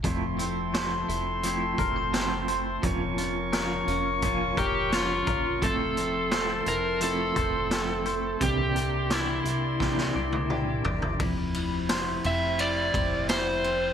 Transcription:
<<
  \new Staff \with { instrumentName = "Woodwind section" } { \time 4/4 \key f \major \tempo 4 = 86 <a' e'' a'' c'''>1 | <bes' des'' des'''>1 | <e'' a'' c'''>1 | <bes' d'' c'''>1 |
<c f a e'>1 | }
  \new Staff \with { instrumentName = "Electric slide guitar" } { \time 4/4 \key f \major r1 | r2 r8 g'8 f'4 | a'4. bes'8 a'2 | g'4 e'2~ e'8 r8 |
r4. e''8 d''4 c''4 | }
  \new Staff \with { instrumentName = "Clean electric guitar" } { \time 4/4 \key f \major f,8 c'8 c''8 e'8 c'8 bes'16 c''16 c'8 c''8 | f,8 f'8 bes'8 des'8 f'8 bes'8 f'8 bes'8 | f,8 c'8 c''8 e'8 c'8 c''8 c'8 c''8 | c8 g'8 d''8 e'8 g'8 d''8 g'8 d''8 |
f,8 e'8 c''8 c'8 e'8 c'8 e'8 c'8 | }
  \new Staff \with { instrumentName = "Clean electric guitar" } { \time 4/4 \key f \major <f a c' e'>8 <a c' e'>8 <f a c' e'>8 <a c' e'>8 <f a c' e'>8 <a c' e'>8 <f a c' e'>8 <a c' e'>8 | <f bes des' f'>8 <bes des' f'>8 <f bes des' f'>8 <bes des' f'>8 <f bes des' f'>8 <bes des' f'>8 <f bes des' f'>8 <bes des' f'>8 | <f a c' e'>8 <a c' e'>8 <f a c' e'>8 <c' e'>8 <f a c' e'>8 <a c' e'>8 <f a c' e'>8 <a c' e'>8 | <c e bes d' g'>8 <bes d' g'>8 <e bes d' g'>8 <bes d' g'>8 <c e bes d' g'>8 <bes d' g'>8 <e bes d' g'>8 <bes d' g'>8 |
r1 | }
  \new Staff \with { instrumentName = "Analog synth bass" } { \clef bass \time 4/4 \key f \major f,,4. f,,4 f,,4. | f,,4. f,,4 f,,4 g,,8 | f,,4. f,,4 f,,4. | c,4. c,4 c,4 g,,8 |
f,,4. f,,4 f,,4. | }
  \new DrumStaff \with { instrumentName = "Drums" } \drummode { \time 4/4 <hh bd>8 hh8 <hh sn>8 hh8 hh8 <hh bd>8 <hh sn>8 hh8 | <hh bd>8 hh8 <hh sn>8 hh8 <hh bd>8 <hh bd>8 <hh sn>8 <hh bd>8 | <hh bd>8 hh8 <hh sn>8 hh8 hh8 <hh bd>8 <hh sn>8 hh8 | <hh bd>8 hh8 <hh sn>8 hh8 <bd sn>16 sn8 tommh16 toml8 tomfh16 tomfh16 |
<bd cymr>8 cymr8 <cymr sn tamb>8 cymr8 cymr8 <bd cymr>8 <cymr sn tamb>8 cymr8 | }
>>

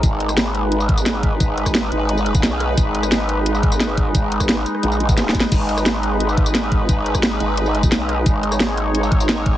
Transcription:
<<
  \new Staff \with { instrumentName = "Analog synth pad" } { \time 4/4 \key gis \minor \tempo 4 = 175 << { b'1~ | b'1~ | b'1~ | b'1 |
b'1~ | b'1 | cis''1 | } \\ { <gis dis'>1~ | <gis dis'>1~ | <gis dis'>1~ | <gis dis'>1~ |
<gis dis'>1~ | <gis dis'>1~ | <gis dis'>1 | } >> }
  \new Staff \with { instrumentName = "Wobble bass" } { \clef bass \time 4/4 \key gis \minor gis,,1 | gis,,4. gis,,4. b,,4 | gis,,1 | gis,,4. r8 ais,,4. r8 |
gis,,1 | gis,,4. gis,,4. b,,4 | gis,,1 | }
  \new DrumStaff \with { instrumentName = "Drums" } \drummode { \time 4/4 <hh bd tamb>8 hh16 <ss tamb>16 <hh sn tamb>8 hh8 hh16 tamb16 <hh bd>16 tamb16 <hh sn tamb>8 <hh bd>8 | <hh bd tamb>8 hh16 <bd ss tamb>16 <hh sn tamb>8 hh8 hh16 tamb16 hh16 <bd tamb>16 <hh sn tamb>8 <hh ss>8 | <hh bd tamb>8 hh16 <ss tamb>16 <hh sn tamb>8 hh8 hh16 tamb16 <hh bd>16 tamb16 <hh sn tamb>8 <hh bd>8 | <hh bd tamb>8 hh16 <bd ss tamb>16 <hh sn tamb>8 <hh tamb>16 ss16 hh16 tamb16 hh16 <bd tamb>16 \tuplet 3/2 { <hh sn tamb>16 r16 sn16 <hh bd tamb>16 sn16 r16 } |
<cymc hh bd tamb>8 hh16 <ss tamb>16 <hh sn tamb>8 hh8 hh16 tamb16 <hh bd>16 tamb16 <hh sn tamb>8 <hh bd>8 | <hh bd tamb>8 hh16 <bd ss tamb>16 <hh sn tamb>8 hh8 hh16 tamb16 hh16 <bd tamb>16 <hh sn tamb>8 <hh ss>8 | <hh bd tamb>8 hh16 <ss tamb>16 <hh sn tamb>8 hh8 hh16 tamb16 <hh bd>16 tamb16 <hh sn tamb>8 <hh bd>8 | }
>>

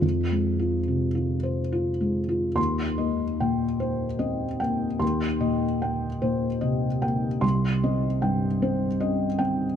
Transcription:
\new Staff \with { instrumentName = "Felt piano" } { \time 3/4 \key ees \mixolydian \tempo 4 = 75 << { r2. | c'''4 r2 | r2. | c'''4 r2 | } \\ { \tuplet 3/2 { <f, f'>8 aes8 f'8 c8 f'8 c''8 f'8 aes8 f'8 } | ees,8 <bes ees''>8 <bes, g''>8 <bes c''>8 <c' ees''>8 <bes g''>8 | <ees, c'''>8 <bes, ees''>8 <bes g''>8 <bes, c''>8 <c ees''>8 <bes g''>8 | c,8 <c' ees''>8 <g, g''>8 <c' c''>8 <des' ees''>8 <c' g''>8 | } >> }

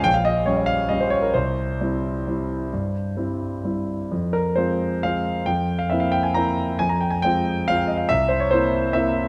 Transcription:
\new Staff \with { instrumentName = "Grand piano" } { \time 3/4 \key c \phrygian \tempo 4 = 135 << { g''16 f''16 ees''8 des''16 ees''16 f''8 ees''16 c''16 des''16 bes'16 | c''2.~ | c''2~ c''8 r8 | r8 bes'8 c''4 f''4 |
g''8. f''16 e''16 f''16 g''16 aes''16 bes''4 | aes''16 bes''16 g''16 aes''16 g''4 f''16 g''16 ees''16 f''16 | e''8 c''16 des''16 c''4 e''4 | } \\ { bes,,4 <g des'>4 <g des'>4 | c,4 <g c' e'>4 <g c' e'>4 | g,4 <g c' e'>4 <g c' e'>4 | f,4 <aes c' f'>4 <aes c' f'>4 |
f,4 <bes c' e'>4 <bes c' e'>4 | f,4 <aes c' f'>4 <aes c' f'>4 | c,4 <bes c' e'>4 <bes c' e'>4 | } >> }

